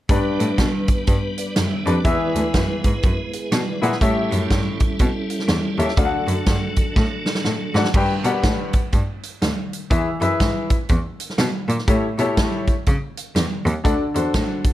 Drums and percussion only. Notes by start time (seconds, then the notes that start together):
0.09 kick, closed hi-hat
0.40 closed hi-hat
0.58 kick, snare, closed hi-hat
0.88 kick, closed hi-hat
1.07 kick, closed hi-hat
1.38 closed hi-hat
1.56 snare, closed hi-hat
1.87 closed hi-hat
2.05 kick, closed hi-hat
2.35 closed hi-hat
2.54 kick, snare, closed hi-hat
2.84 kick, closed hi-hat
3.03 kick, closed hi-hat
3.33 closed hi-hat
3.52 snare, closed hi-hat
3.83 closed hi-hat
3.92 snare
4.01 kick, closed hi-hat
4.32 closed hi-hat
4.50 kick, snare, closed hi-hat
4.80 kick, closed hi-hat
4.99 kick, closed hi-hat
5.30 closed hi-hat
5.39 snare
5.48 snare, closed hi-hat
5.79 closed hi-hat
5.88 snare
5.97 kick, closed hi-hat
6.28 closed hi-hat
6.46 kick, snare, closed hi-hat
6.76 kick, closed hi-hat
6.96 kick, snare
7.26 snare
7.35 snare
7.44 snare
7.75 snare
7.84 snare
7.94 kick, crash
8.24 closed hi-hat
8.43 kick, snare, closed hi-hat
8.73 kick, closed hi-hat
8.92 kick, closed hi-hat
9.23 closed hi-hat
9.42 snare, closed hi-hat
9.73 closed hi-hat
9.91 kick, closed hi-hat
10.21 closed hi-hat
10.40 kick, snare, closed hi-hat
10.70 kick, closed hi-hat
10.89 kick, closed hi-hat
11.20 closed hi-hat
11.30 snare
11.38 snare, closed hi-hat
11.69 closed hi-hat
11.79 snare
11.88 kick, closed hi-hat
12.19 closed hi-hat
12.37 kick, snare, closed hi-hat
12.67 kick, closed hi-hat
12.86 kick, closed hi-hat
13.17 closed hi-hat
13.36 snare, closed hi-hat
13.66 closed hi-hat
13.85 kick, closed hi-hat
14.15 closed hi-hat
14.34 kick, snare, closed hi-hat
14.64 kick, closed hi-hat